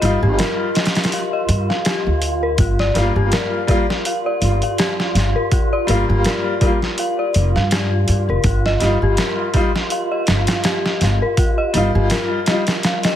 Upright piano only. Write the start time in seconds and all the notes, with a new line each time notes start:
0.01 G3 D#4 F4
2.94 G3 A#3 F4
3.67 G3 A#3 F4
5.87 G3 A#3 F4
6.61 G3 A#3 F4
8.80 G3 D#4 F4
9.53 G3 D#4 F4
11.73 G3 D#4 F4
12.47 G3 D#4
12.51 F4